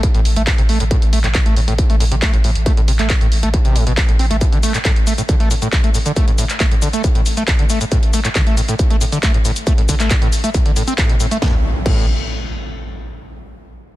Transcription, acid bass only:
0.03 A2
0.15 A2
0.36 A3
0.47 A2
0.58 C3
0.69 A3
0.80 A2
0.91 A2
1.13 A3
1.24 A2
1.35 C3
1.46 A3
1.56 A2
1.68 A2
1.90 A3
2.00 A2
2.12 C3
2.22 A3
2.34 A2
2.44 A2
2.66 A3
2.77 A2
2.88 C3
2.99 A3
3.10 A2
3.21 A2
3.43 A3
3.54 A2
3.65 C3
3.76 A2
3.87 B2
4.09 A2
4.19 C4
4.31 A3
4.41 A2
4.52 D3
4.63 A3
4.74 A2
4.85 A2
5.07 A3
5.18 A2
5.29 D3
5.40 A3
5.51 A2
5.62 A2
5.84 A3
5.94 A2
6.06 D3
6.16 A3
6.28 A2
6.38 A2
6.60 A3
6.71 A2
6.82 D3
6.93 A3
7.04 A2
7.15 A2
7.37 A3
7.48 A2
7.59 D3
7.70 A3
7.81 A2
7.92 A2
8.14 A3
8.25 A2
8.35 D3
8.47 A3
8.57 A2
8.69 A2
8.90 A3
9.01 A2
9.12 D3
9.23 A3
9.34 A2
9.45 A2
9.67 A3
9.78 A2
9.89 D3
10.00 A3
10.11 A2
10.22 A2
10.44 A3
10.54 A2
10.66 D3
10.76 A2
10.87 C4
10.98 A2
11.09 C3
11.20 A2
11.31 A3
11.42 A2
11.86 A2

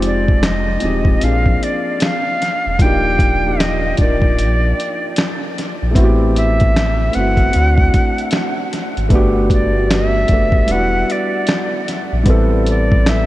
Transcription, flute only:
0.06 D5
0.45 D#5
1.24 F5
1.64 D5
2.02 F5
2.82 G5
3.60 D#5
4.00 D5
6.36 E5
7.15 F#5
9.53 D5
9.93 E5
10.72 F#5
11.12 D5
12.69 D5
13.09 E5

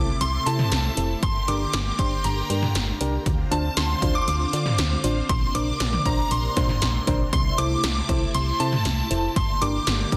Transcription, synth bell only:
0.21 C6
0.46 A5
1.23 C6
1.48 D6
1.74 D6
1.99 C6
2.25 A#5
3.51 A5
3.77 C6
4.15 C6 D6
4.22 D6
4.28 D6
5.29 C6
5.55 D6
6.06 A#5
6.31 C6
7.33 C6
7.58 D6
8.35 C6
8.60 A5
9.36 C6
9.61 D6

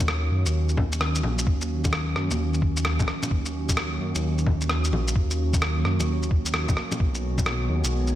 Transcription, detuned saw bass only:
Already playing: D#2
0.31 F#2
0.46 D#2
1.24 A#1
1.47 D#2
2.16 F#2
2.31 D#2
3.31 D#2
4.00 F#2
4.15 D#2
4.93 A#1
5.16 D#2
5.85 F#2
5.99 D#2
7.00 B1
7.69 D#2
7.84 B1

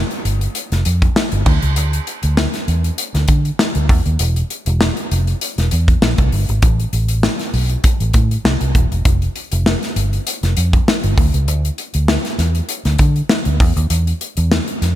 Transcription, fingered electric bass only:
0.25 G1
0.72 F1
0.86 F2
1.32 G1
1.46 D2
1.63 C#2
1.77 D2
2.24 D2
2.68 E2
3.15 D2
3.28 D3
3.76 D2
3.90 E2
4.06 D#2
4.20 E1
4.67 E1
5.12 F1
5.58 E1
5.73 E2
6.03 A#1
6.18 C2
6.33 G1
6.49 G#1
6.62 A1
6.93 A1
7.54 B1
8.01 A1
8.14 A2
8.45 C2
8.61 C2
8.75 D#1
8.92 E1
9.05 F1
9.53 F1
9.96 G1
10.43 F1
10.57 F2
11.04 G1
11.18 D2
11.34 C#2
11.48 D2
11.95 D2
12.39 E2
12.85 D2
12.99 D3
13.46 D2
13.60 E2
13.77 D#2
13.90 E2
14.38 E2
14.82 F2

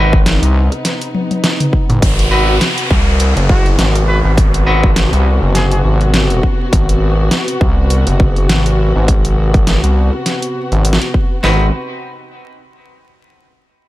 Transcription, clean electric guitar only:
Already playing: C4 D#4 F#4 B4
2.31 C4 D#4 F#4 B4
4.67 C4 D#4 F#4 B4
11.43 C4 D#4 F#4 B4

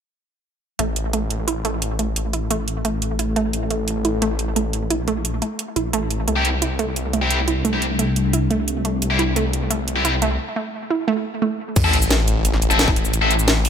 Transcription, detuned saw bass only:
0.79 A1
2.16 A1
3.53 A1
4.91 A#1
5.76 A#1
5.93 A1
6.28 C2
7.65 C2
9.02 C2
11.76 A1
13.13 A1

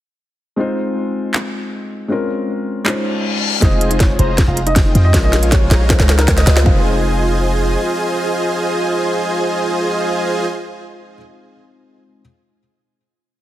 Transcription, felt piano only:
0.56 G#3 C4 D#4 F4
0.60 C5
2.08 G#3 C4 C#4 F4
2.12 A#4
2.84 G#3 C#4 D#4 F4
2.88 C5
3.60 G#3 C4 D#4 F4 C5
5.12 G#3 C#4 F4
5.16 A#4
5.88 G#3 C#4 D#4 F4
5.92 C5
6.63 G#3 C4 D#4
6.68 F4 C5

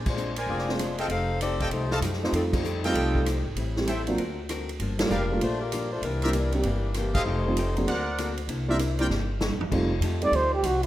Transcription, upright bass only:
Already playing: A#1
0.46 F1
1.08 F1
1.71 C2
2.01 F#2
2.33 F2
2.94 C2
3.44 G#1
3.55 A1
4.18 D2
4.79 G1
5.10 F1
5.40 A#1
6.02 C2
6.64 G1
7.25 F1
7.87 D2
8.47 C2
9.09 G1
9.50 A#1
9.59 G1
9.71 F1
10.01 F2
10.32 D2
10.63 C2

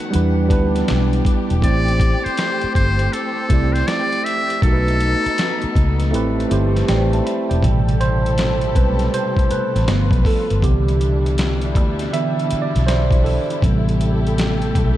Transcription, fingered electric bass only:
0.15 E2
0.51 D2
0.91 B1
1.51 E1
1.63 A1
2.26 muted fingered electric bass stroke
2.64 muted fingered electric bass stroke
2.76 G1
3.51 C2
4.63 B1
5.26 muted fingered electric bass stroke
5.64 muted fingered electric bass stroke
5.77 C#2
6.14 A1
6.51 G1
6.89 A1
7.51 E1
7.64 A1
8.76 B1
9.52 muted fingered electric bass stroke
9.76 A1
9.89 G1
10.12 B1
10.51 G1
10.64 C2
11.76 D2
12.52 muted fingered electric bass stroke
12.76 B1
13.63 A1
14.77 B1

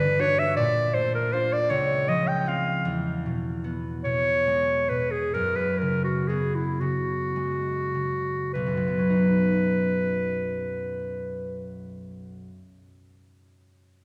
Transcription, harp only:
Already playing: G2 D3
0.19 D4 F#4
0.57 A#2
0.95 A3
1.32 D4 F4
1.70 C#2
2.08 F3
2.46 C4 F4
2.85 E2
3.26 B2
3.64 B3
4.05 B2
4.47 G#3
4.90 B2
5.34 F#2
5.82 C#3
6.30 B3
6.81 C#3
7.36 G#3
7.94 C#3
8.55 B1
8.66 F#2
8.77 F#3
8.88 B3
8.99 C#4
9.10 D#4

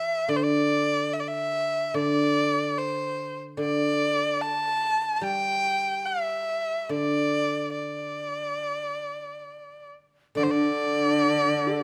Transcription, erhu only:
Already playing: E5
0.29 D5
0.36 C5
0.44 D5
1.13 E5
1.20 D5
1.28 E5
1.95 D5
2.78 C5
3.59 D5
4.41 A5
5.16 A5
5.23 G5
6.06 E5
6.90 D5
7.74 D5
10.37 D5
10.43 C5
10.52 D5

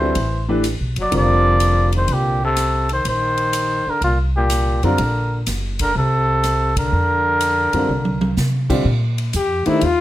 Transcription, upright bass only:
Already playing: D2
0.16 A1
0.81 B1
0.96 F#1
1.12 F1
2.09 C2
3.05 A#1
3.87 muted upright bass stroke
4.01 C2
4.83 F#2
4.99 A#1
5.47 F#1
5.95 C2
6.92 F2
7.73 F#2
7.89 C2
8.37 C3
8.85 A#2
9.34 F2
9.67 muted upright bass stroke
9.82 D#2

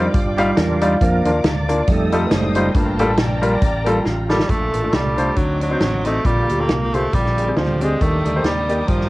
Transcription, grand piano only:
0.38 G3 D#4 F4 F5
0.82 G3 D#4 F4 D5
1.25 A#3 D4 F4 D5
1.69 A#3 D4 F4 D5
2.12 G3 D#4 F4 A4
2.56 G3 D#4 F4 C5
2.75 G2
2.99 G3 A#3 F4 A4
3.42 G3 A#3 F4 A#4
3.86 G3 A#3 F4 A4
4.29 G3 A#3 F4 A4
4.49 A#2
4.73 F4 A#4
4.82 A3 D4 F4 A4
5.17 A3 D4 F4 C5
5.37 D3
5.61 F#4 D5
5.70 C4 D#4 F#4 C5
6.06 C4 D#4 F#4 D#5
6.25 A#2
6.51 G4 D5
6.60 A#3 F4 G4 A4
6.94 A#3 F4 G4 C5
7.14 A#2
7.38 G#4 D5
7.48 C4 G4 G#4 D5
7.82 C4 G4 G#4 D5
8.01 D#3
8.26 G4 D5
8.36 A#3 D#4 G4 C5
8.69 A#3 D#4 G4 D5

